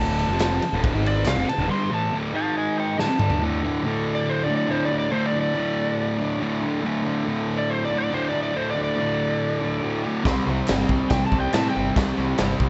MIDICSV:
0, 0, Header, 1, 7, 480
1, 0, Start_track
1, 0, Tempo, 427960
1, 1899, Time_signature, 4, 2, 24, 8
1, 14235, End_track
2, 0, Start_track
2, 0, Title_t, "Electric slide guitar"
2, 0, Program_c, 0, 29
2, 0, Note_on_c, 0, 81, 114
2, 906, Note_off_c, 0, 81, 0
2, 1206, Note_on_c, 0, 74, 113
2, 1425, Note_off_c, 0, 74, 0
2, 1431, Note_on_c, 0, 77, 107
2, 1658, Note_off_c, 0, 77, 0
2, 1670, Note_on_c, 0, 81, 94
2, 1898, Note_off_c, 0, 81, 0
2, 1917, Note_on_c, 0, 84, 102
2, 2142, Note_off_c, 0, 84, 0
2, 2178, Note_on_c, 0, 81, 118
2, 2393, Note_off_c, 0, 81, 0
2, 2639, Note_on_c, 0, 77, 97
2, 2649, Note_on_c, 0, 81, 107
2, 2868, Note_off_c, 0, 81, 0
2, 2870, Note_off_c, 0, 77, 0
2, 2887, Note_on_c, 0, 75, 86
2, 2895, Note_on_c, 0, 80, 101
2, 3099, Note_off_c, 0, 75, 0
2, 3112, Note_off_c, 0, 80, 0
2, 3132, Note_on_c, 0, 75, 89
2, 3137, Note_on_c, 0, 79, 101
2, 3342, Note_off_c, 0, 75, 0
2, 3352, Note_off_c, 0, 79, 0
2, 3362, Note_on_c, 0, 81, 112
2, 3818, Note_off_c, 0, 81, 0
2, 4653, Note_on_c, 0, 74, 97
2, 4794, Note_off_c, 0, 74, 0
2, 4817, Note_on_c, 0, 72, 90
2, 4956, Note_off_c, 0, 72, 0
2, 4974, Note_on_c, 0, 74, 88
2, 5110, Note_off_c, 0, 74, 0
2, 5124, Note_on_c, 0, 74, 108
2, 5269, Note_off_c, 0, 74, 0
2, 5275, Note_on_c, 0, 72, 87
2, 5425, Note_off_c, 0, 72, 0
2, 5439, Note_on_c, 0, 74, 92
2, 5581, Note_off_c, 0, 74, 0
2, 5594, Note_on_c, 0, 74, 88
2, 5733, Note_on_c, 0, 72, 97
2, 5745, Note_off_c, 0, 74, 0
2, 5894, Note_off_c, 0, 72, 0
2, 5899, Note_on_c, 0, 74, 89
2, 6054, Note_off_c, 0, 74, 0
2, 6068, Note_on_c, 0, 74, 105
2, 7463, Note_off_c, 0, 74, 0
2, 8507, Note_on_c, 0, 74, 107
2, 8637, Note_on_c, 0, 72, 98
2, 8641, Note_off_c, 0, 74, 0
2, 8786, Note_off_c, 0, 72, 0
2, 8802, Note_on_c, 0, 74, 95
2, 8948, Note_off_c, 0, 74, 0
2, 8974, Note_on_c, 0, 74, 108
2, 9115, Note_off_c, 0, 74, 0
2, 9132, Note_on_c, 0, 72, 95
2, 9273, Note_off_c, 0, 72, 0
2, 9294, Note_on_c, 0, 74, 95
2, 9435, Note_off_c, 0, 74, 0
2, 9452, Note_on_c, 0, 74, 112
2, 9593, Note_off_c, 0, 74, 0
2, 9604, Note_on_c, 0, 72, 101
2, 9749, Note_off_c, 0, 72, 0
2, 9757, Note_on_c, 0, 74, 87
2, 9895, Note_off_c, 0, 74, 0
2, 9909, Note_on_c, 0, 74, 109
2, 11301, Note_off_c, 0, 74, 0
2, 12449, Note_on_c, 0, 79, 115
2, 12609, Note_off_c, 0, 79, 0
2, 12634, Note_on_c, 0, 81, 96
2, 12782, Note_off_c, 0, 81, 0
2, 12790, Note_on_c, 0, 79, 96
2, 12939, Note_off_c, 0, 79, 0
2, 12959, Note_on_c, 0, 81, 100
2, 13104, Note_off_c, 0, 81, 0
2, 13123, Note_on_c, 0, 79, 107
2, 13343, Note_off_c, 0, 79, 0
2, 14235, End_track
3, 0, Start_track
3, 0, Title_t, "Distorted electric guitar"
3, 0, Program_c, 1, 30
3, 0, Note_on_c, 1, 38, 87
3, 0, Note_on_c, 1, 45, 103
3, 0, Note_on_c, 1, 50, 105
3, 328, Note_off_c, 1, 38, 0
3, 336, Note_off_c, 1, 45, 0
3, 336, Note_off_c, 1, 50, 0
3, 348, Note_on_c, 1, 41, 92
3, 359, Note_on_c, 1, 48, 94
3, 370, Note_on_c, 1, 53, 99
3, 695, Note_off_c, 1, 41, 0
3, 700, Note_off_c, 1, 48, 0
3, 706, Note_off_c, 1, 53, 0
3, 819, Note_on_c, 1, 38, 89
3, 832, Note_on_c, 1, 45, 100
3, 846, Note_on_c, 1, 50, 101
3, 1050, Note_off_c, 1, 38, 0
3, 1056, Note_on_c, 1, 44, 99
3, 1057, Note_off_c, 1, 45, 0
3, 1064, Note_off_c, 1, 50, 0
3, 1067, Note_on_c, 1, 51, 107
3, 1070, Note_on_c, 1, 56, 112
3, 1410, Note_off_c, 1, 44, 0
3, 1415, Note_off_c, 1, 51, 0
3, 1417, Note_off_c, 1, 56, 0
3, 1420, Note_on_c, 1, 48, 90
3, 1429, Note_on_c, 1, 55, 101
3, 1519, Note_off_c, 1, 48, 0
3, 1524, Note_on_c, 1, 41, 93
3, 1536, Note_off_c, 1, 55, 0
3, 1540, Note_on_c, 1, 48, 104
3, 1642, Note_off_c, 1, 41, 0
3, 1652, Note_off_c, 1, 48, 0
3, 1777, Note_on_c, 1, 38, 96
3, 1795, Note_on_c, 1, 45, 101
3, 1881, Note_off_c, 1, 38, 0
3, 1886, Note_on_c, 1, 43, 105
3, 1888, Note_off_c, 1, 45, 0
3, 1892, Note_on_c, 1, 50, 101
3, 1910, Note_on_c, 1, 55, 115
3, 2126, Note_off_c, 1, 43, 0
3, 2129, Note_off_c, 1, 50, 0
3, 2132, Note_on_c, 1, 45, 95
3, 2138, Note_off_c, 1, 55, 0
3, 2147, Note_on_c, 1, 52, 97
3, 2154, Note_on_c, 1, 57, 111
3, 2369, Note_off_c, 1, 45, 0
3, 2377, Note_off_c, 1, 52, 0
3, 2380, Note_off_c, 1, 57, 0
3, 2382, Note_on_c, 1, 38, 91
3, 2392, Note_on_c, 1, 45, 107
3, 2403, Note_on_c, 1, 50, 103
3, 2615, Note_off_c, 1, 38, 0
3, 2620, Note_off_c, 1, 45, 0
3, 2620, Note_on_c, 1, 44, 102
3, 2625, Note_off_c, 1, 50, 0
3, 2633, Note_on_c, 1, 51, 93
3, 2637, Note_on_c, 1, 56, 96
3, 3335, Note_off_c, 1, 44, 0
3, 3341, Note_off_c, 1, 51, 0
3, 3343, Note_off_c, 1, 56, 0
3, 3350, Note_on_c, 1, 38, 90
3, 3361, Note_on_c, 1, 45, 104
3, 3459, Note_off_c, 1, 38, 0
3, 3464, Note_off_c, 1, 45, 0
3, 3464, Note_on_c, 1, 41, 88
3, 3476, Note_on_c, 1, 48, 93
3, 3566, Note_off_c, 1, 41, 0
3, 3571, Note_on_c, 1, 43, 96
3, 3579, Note_off_c, 1, 48, 0
3, 3584, Note_on_c, 1, 50, 100
3, 3596, Note_on_c, 1, 55, 107
3, 3807, Note_off_c, 1, 43, 0
3, 3811, Note_on_c, 1, 38, 93
3, 3816, Note_off_c, 1, 50, 0
3, 3822, Note_off_c, 1, 55, 0
3, 3835, Note_on_c, 1, 45, 97
3, 3852, Note_on_c, 1, 50, 108
3, 4058, Note_off_c, 1, 50, 0
3, 4063, Note_on_c, 1, 50, 81
3, 4090, Note_off_c, 1, 45, 0
3, 4104, Note_on_c, 1, 45, 68
3, 4280, Note_off_c, 1, 38, 0
3, 4284, Note_on_c, 1, 38, 76
3, 4302, Note_off_c, 1, 45, 0
3, 4316, Note_on_c, 1, 45, 78
3, 4327, Note_off_c, 1, 50, 0
3, 4331, Note_on_c, 1, 50, 90
3, 5003, Note_off_c, 1, 50, 0
3, 5008, Note_on_c, 1, 50, 77
3, 5041, Note_off_c, 1, 45, 0
3, 5055, Note_on_c, 1, 45, 69
3, 5243, Note_off_c, 1, 38, 0
3, 5247, Note_on_c, 1, 38, 95
3, 5251, Note_off_c, 1, 45, 0
3, 5264, Note_on_c, 1, 45, 102
3, 5289, Note_off_c, 1, 50, 0
3, 5293, Note_on_c, 1, 50, 99
3, 5474, Note_off_c, 1, 50, 0
3, 5479, Note_on_c, 1, 50, 80
3, 5517, Note_off_c, 1, 45, 0
3, 5530, Note_on_c, 1, 45, 65
3, 5723, Note_off_c, 1, 38, 0
3, 5727, Note_on_c, 1, 38, 95
3, 5728, Note_off_c, 1, 45, 0
3, 5741, Note_on_c, 1, 45, 104
3, 5762, Note_off_c, 1, 50, 0
3, 5766, Note_on_c, 1, 50, 110
3, 5966, Note_off_c, 1, 50, 0
3, 5971, Note_on_c, 1, 50, 81
3, 6006, Note_off_c, 1, 45, 0
3, 6020, Note_on_c, 1, 45, 69
3, 6211, Note_off_c, 1, 38, 0
3, 6216, Note_on_c, 1, 38, 77
3, 6221, Note_off_c, 1, 45, 0
3, 6234, Note_on_c, 1, 45, 96
3, 6252, Note_off_c, 1, 50, 0
3, 6256, Note_on_c, 1, 50, 86
3, 6928, Note_off_c, 1, 50, 0
3, 6932, Note_on_c, 1, 50, 75
3, 6959, Note_off_c, 1, 45, 0
3, 6972, Note_on_c, 1, 45, 61
3, 7157, Note_off_c, 1, 38, 0
3, 7162, Note_on_c, 1, 38, 90
3, 7178, Note_off_c, 1, 45, 0
3, 7191, Note_on_c, 1, 45, 101
3, 7203, Note_off_c, 1, 50, 0
3, 7208, Note_on_c, 1, 50, 110
3, 7412, Note_off_c, 1, 50, 0
3, 7416, Note_on_c, 1, 50, 86
3, 7445, Note_off_c, 1, 45, 0
3, 7458, Note_on_c, 1, 45, 68
3, 7643, Note_off_c, 1, 38, 0
3, 7648, Note_on_c, 1, 38, 101
3, 7666, Note_off_c, 1, 45, 0
3, 7679, Note_on_c, 1, 45, 97
3, 7689, Note_off_c, 1, 50, 0
3, 7694, Note_on_c, 1, 50, 109
3, 7882, Note_off_c, 1, 50, 0
3, 7887, Note_on_c, 1, 50, 79
3, 7918, Note_off_c, 1, 45, 0
3, 7931, Note_on_c, 1, 45, 71
3, 8124, Note_off_c, 1, 38, 0
3, 8129, Note_on_c, 1, 38, 85
3, 8147, Note_off_c, 1, 45, 0
3, 8160, Note_on_c, 1, 45, 84
3, 8169, Note_off_c, 1, 50, 0
3, 8174, Note_on_c, 1, 50, 92
3, 8849, Note_off_c, 1, 50, 0
3, 8862, Note_on_c, 1, 50, 82
3, 8895, Note_off_c, 1, 45, 0
3, 8909, Note_on_c, 1, 45, 65
3, 9085, Note_off_c, 1, 38, 0
3, 9098, Note_on_c, 1, 38, 89
3, 9106, Note_off_c, 1, 45, 0
3, 9120, Note_on_c, 1, 45, 103
3, 9126, Note_off_c, 1, 50, 0
3, 9139, Note_on_c, 1, 50, 107
3, 9323, Note_off_c, 1, 50, 0
3, 9336, Note_on_c, 1, 50, 80
3, 9370, Note_off_c, 1, 45, 0
3, 9383, Note_on_c, 1, 45, 65
3, 9549, Note_off_c, 1, 38, 0
3, 9562, Note_on_c, 1, 38, 104
3, 9573, Note_off_c, 1, 45, 0
3, 9586, Note_on_c, 1, 45, 107
3, 9588, Note_off_c, 1, 50, 0
3, 9601, Note_on_c, 1, 50, 105
3, 9801, Note_off_c, 1, 50, 0
3, 9814, Note_on_c, 1, 50, 78
3, 9844, Note_off_c, 1, 45, 0
3, 9857, Note_on_c, 1, 45, 64
3, 10041, Note_off_c, 1, 38, 0
3, 10054, Note_on_c, 1, 38, 78
3, 10068, Note_off_c, 1, 45, 0
3, 10081, Note_on_c, 1, 45, 86
3, 10089, Note_off_c, 1, 50, 0
3, 10102, Note_on_c, 1, 50, 97
3, 10759, Note_off_c, 1, 50, 0
3, 10772, Note_on_c, 1, 50, 74
3, 10807, Note_off_c, 1, 45, 0
3, 10821, Note_on_c, 1, 45, 61
3, 10991, Note_off_c, 1, 38, 0
3, 11005, Note_on_c, 1, 38, 88
3, 11008, Note_off_c, 1, 45, 0
3, 11021, Note_on_c, 1, 45, 105
3, 11030, Note_off_c, 1, 50, 0
3, 11044, Note_on_c, 1, 50, 102
3, 11239, Note_off_c, 1, 50, 0
3, 11253, Note_on_c, 1, 50, 78
3, 11279, Note_off_c, 1, 45, 0
3, 11292, Note_on_c, 1, 45, 70
3, 11476, Note_off_c, 1, 38, 0
3, 11480, Note_on_c, 1, 48, 105
3, 11482, Note_off_c, 1, 50, 0
3, 11497, Note_off_c, 1, 45, 0
3, 11501, Note_on_c, 1, 55, 99
3, 11522, Note_on_c, 1, 60, 101
3, 11728, Note_off_c, 1, 60, 0
3, 11732, Note_on_c, 1, 60, 80
3, 11777, Note_off_c, 1, 55, 0
3, 11782, Note_on_c, 1, 55, 63
3, 11975, Note_off_c, 1, 48, 0
3, 11980, Note_on_c, 1, 48, 84
3, 11998, Note_off_c, 1, 55, 0
3, 12003, Note_on_c, 1, 55, 79
3, 12025, Note_off_c, 1, 60, 0
3, 12030, Note_on_c, 1, 60, 98
3, 12677, Note_off_c, 1, 60, 0
3, 12691, Note_on_c, 1, 60, 72
3, 12736, Note_off_c, 1, 55, 0
3, 12741, Note_on_c, 1, 55, 65
3, 12916, Note_off_c, 1, 48, 0
3, 12929, Note_on_c, 1, 48, 96
3, 12945, Note_off_c, 1, 55, 0
3, 12949, Note_on_c, 1, 55, 99
3, 12954, Note_off_c, 1, 60, 0
3, 12968, Note_on_c, 1, 60, 101
3, 13151, Note_off_c, 1, 60, 0
3, 13164, Note_on_c, 1, 60, 82
3, 13210, Note_off_c, 1, 55, 0
3, 13215, Note_on_c, 1, 55, 70
3, 13393, Note_off_c, 1, 48, 0
3, 13406, Note_on_c, 1, 48, 102
3, 13427, Note_off_c, 1, 55, 0
3, 13432, Note_on_c, 1, 55, 108
3, 13440, Note_off_c, 1, 60, 0
3, 13454, Note_on_c, 1, 60, 114
3, 13636, Note_off_c, 1, 60, 0
3, 13650, Note_on_c, 1, 60, 81
3, 13690, Note_off_c, 1, 55, 0
3, 13694, Note_on_c, 1, 55, 61
3, 13861, Note_off_c, 1, 48, 0
3, 13874, Note_on_c, 1, 48, 81
3, 13889, Note_off_c, 1, 55, 0
3, 13893, Note_on_c, 1, 55, 83
3, 13901, Note_off_c, 1, 60, 0
3, 13914, Note_on_c, 1, 60, 89
3, 14235, Note_off_c, 1, 48, 0
3, 14235, Note_off_c, 1, 55, 0
3, 14235, Note_off_c, 1, 60, 0
3, 14235, End_track
4, 0, Start_track
4, 0, Title_t, "Picked electric bass"
4, 0, Program_c, 2, 34
4, 0, Note_on_c, 2, 26, 101
4, 308, Note_off_c, 2, 26, 0
4, 316, Note_on_c, 2, 29, 99
4, 660, Note_off_c, 2, 29, 0
4, 814, Note_on_c, 2, 26, 104
4, 1039, Note_off_c, 2, 26, 0
4, 1056, Note_on_c, 2, 32, 101
4, 1392, Note_off_c, 2, 32, 0
4, 1397, Note_on_c, 2, 36, 95
4, 1518, Note_off_c, 2, 36, 0
4, 1528, Note_on_c, 2, 29, 99
4, 1644, Note_off_c, 2, 29, 0
4, 1771, Note_on_c, 2, 26, 102
4, 1886, Note_off_c, 2, 26, 0
4, 11500, Note_on_c, 2, 36, 96
4, 11656, Note_off_c, 2, 36, 0
4, 11741, Note_on_c, 2, 36, 87
4, 11896, Note_off_c, 2, 36, 0
4, 11998, Note_on_c, 2, 31, 93
4, 12147, Note_off_c, 2, 31, 0
4, 12217, Note_on_c, 2, 36, 91
4, 12373, Note_off_c, 2, 36, 0
4, 12459, Note_on_c, 2, 36, 94
4, 12614, Note_off_c, 2, 36, 0
4, 12702, Note_on_c, 2, 36, 89
4, 12856, Note_off_c, 2, 36, 0
4, 12942, Note_on_c, 2, 45, 89
4, 13096, Note_off_c, 2, 45, 0
4, 13193, Note_on_c, 2, 31, 92
4, 13343, Note_off_c, 2, 31, 0
4, 13427, Note_on_c, 2, 36, 105
4, 13579, Note_off_c, 2, 36, 0
4, 13664, Note_on_c, 2, 36, 93
4, 13816, Note_off_c, 2, 36, 0
4, 13903, Note_on_c, 2, 31, 99
4, 14055, Note_off_c, 2, 31, 0
4, 14130, Note_on_c, 2, 36, 91
4, 14235, Note_off_c, 2, 36, 0
4, 14235, End_track
5, 0, Start_track
5, 0, Title_t, "Muted distorted electric guitar strokes"
5, 711, Note_on_c, 9, 29, 58
5, 823, Note_off_c, 9, 29, 0
5, 1646, Note_on_c, 9, 29, 60
5, 1758, Note_off_c, 9, 29, 0
5, 14235, End_track
6, 0, Start_track
6, 0, Title_t, "Muted picked electric bass strokes"
6, 700, Note_on_c, 9, 29, 47
6, 812, Note_off_c, 9, 29, 0
6, 14235, End_track
7, 0, Start_track
7, 0, Title_t, "Drums"
7, 212, Note_on_c, 9, 51, 81
7, 324, Note_off_c, 9, 51, 0
7, 443, Note_on_c, 9, 51, 103
7, 452, Note_on_c, 9, 39, 88
7, 454, Note_on_c, 9, 38, 117
7, 555, Note_off_c, 9, 51, 0
7, 564, Note_off_c, 9, 39, 0
7, 567, Note_off_c, 9, 38, 0
7, 697, Note_on_c, 9, 51, 83
7, 809, Note_off_c, 9, 51, 0
7, 940, Note_on_c, 9, 36, 115
7, 940, Note_on_c, 9, 51, 108
7, 1052, Note_off_c, 9, 51, 0
7, 1053, Note_off_c, 9, 36, 0
7, 1192, Note_on_c, 9, 51, 81
7, 1304, Note_off_c, 9, 51, 0
7, 1408, Note_on_c, 9, 39, 100
7, 1419, Note_on_c, 9, 51, 105
7, 1430, Note_on_c, 9, 38, 112
7, 1520, Note_off_c, 9, 39, 0
7, 1531, Note_off_c, 9, 51, 0
7, 1542, Note_off_c, 9, 38, 0
7, 1673, Note_on_c, 9, 51, 77
7, 1785, Note_off_c, 9, 51, 0
7, 3358, Note_on_c, 9, 38, 68
7, 3470, Note_off_c, 9, 38, 0
7, 3582, Note_on_c, 9, 45, 90
7, 3694, Note_off_c, 9, 45, 0
7, 3702, Note_on_c, 9, 43, 91
7, 3814, Note_off_c, 9, 43, 0
7, 11500, Note_on_c, 9, 36, 124
7, 11502, Note_on_c, 9, 49, 69
7, 11514, Note_on_c, 9, 38, 116
7, 11612, Note_off_c, 9, 36, 0
7, 11615, Note_off_c, 9, 49, 0
7, 11626, Note_off_c, 9, 38, 0
7, 11975, Note_on_c, 9, 39, 104
7, 11981, Note_on_c, 9, 49, 72
7, 11992, Note_on_c, 9, 38, 121
7, 12087, Note_off_c, 9, 39, 0
7, 12093, Note_off_c, 9, 49, 0
7, 12104, Note_off_c, 9, 38, 0
7, 12217, Note_on_c, 9, 36, 90
7, 12330, Note_off_c, 9, 36, 0
7, 12449, Note_on_c, 9, 49, 71
7, 12456, Note_on_c, 9, 36, 118
7, 12460, Note_on_c, 9, 38, 114
7, 12561, Note_off_c, 9, 49, 0
7, 12569, Note_off_c, 9, 36, 0
7, 12572, Note_off_c, 9, 38, 0
7, 12695, Note_on_c, 9, 36, 85
7, 12808, Note_off_c, 9, 36, 0
7, 12934, Note_on_c, 9, 49, 69
7, 12941, Note_on_c, 9, 39, 94
7, 12945, Note_on_c, 9, 38, 119
7, 13046, Note_off_c, 9, 49, 0
7, 13053, Note_off_c, 9, 39, 0
7, 13057, Note_off_c, 9, 38, 0
7, 13418, Note_on_c, 9, 36, 126
7, 13419, Note_on_c, 9, 49, 73
7, 13431, Note_on_c, 9, 38, 123
7, 13530, Note_off_c, 9, 36, 0
7, 13532, Note_off_c, 9, 49, 0
7, 13543, Note_off_c, 9, 38, 0
7, 13881, Note_on_c, 9, 49, 69
7, 13893, Note_on_c, 9, 38, 117
7, 13897, Note_on_c, 9, 39, 96
7, 13994, Note_off_c, 9, 49, 0
7, 14005, Note_off_c, 9, 38, 0
7, 14009, Note_off_c, 9, 39, 0
7, 14133, Note_on_c, 9, 36, 98
7, 14235, Note_off_c, 9, 36, 0
7, 14235, End_track
0, 0, End_of_file